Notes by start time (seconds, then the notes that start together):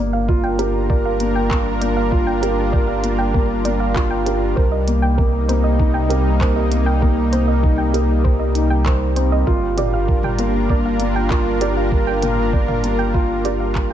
Already playing: G1 G3 A#3 D4 F4 A#4
0.13 F5
0.28 F4, kick
0.44 G5
0.59 G4 A#4, closed hi-hat
0.90 A#4 D5, kick
1.05 F5
1.20 A#3, closed hi-hat
1.35 G5
1.51 A#3 A#4, kick, clap
1.81 A#3 D5, closed hi-hat
1.97 F5
2.12 F4, kick
2.27 G5
2.41 G4 A#4, closed hi-hat
2.73 A#4 D5, kick
2.88 F5
3.03 A#3, closed hi-hat
3.18 G5
3.34 A#3 A#4, kick
3.65 A#3 D5, closed hi-hat
3.80 F5
3.95 F4, kick, clap
4.10 G5
4.26 G4 A#4, closed hi-hat
4.56 C2 C3 A#3 D#4 A#4 C5, kick
4.72 D#5
4.87 A#3, closed hi-hat
5.02 G5
5.18 A#3 A#4, kick
5.48 A#3 C5, closed hi-hat
5.64 D#5
5.79 D#4, kick
5.94 G5
6.09 G4 A#4, closed hi-hat
6.40 A#4 C5, kick, clap
6.56 D#5
6.71 A#3, closed hi-hat
6.86 G5
7.02 A#3 A#4, kick
7.32 A#3 C5, closed hi-hat
7.48 D#5
7.63 D#4, kick
7.78 G5
7.94 G4 A#4, closed hi-hat
8.24 A#4 C5, kick
8.39 D#5
8.55 D#4, closed hi-hat
8.70 G5
8.86 A#4 C5, kick, clap
9.16 C4 C5, closed hi-hat
9.32 D#5
9.47 G1 D4 F4 A#4, kick
9.77 G4 D5, closed hi-hat, mid tom
9.94 F5
10.08 A#4, kick
10.23 G5, mid tom
10.38 A#3 A#4, closed hi-hat
10.69 A#3 D5, kick
10.85 F5
11.00 A#3, closed hi-hat
11.16 G5
11.30 F4 A#4, kick, clap
11.61 G4 D5, closed hi-hat
11.77 F5
11.92 A#4, kick
12.07 G5
12.22 A#3 A#4, closed hi-hat, mid tom
12.53 A#3 D5, kick
12.68 F5, mid tom
12.83 A#3, closed hi-hat
12.99 G5
13.14 F4 A#4, kick
13.45 G4 D5, closed hi-hat
13.60 F5
13.75 A#4, kick, clap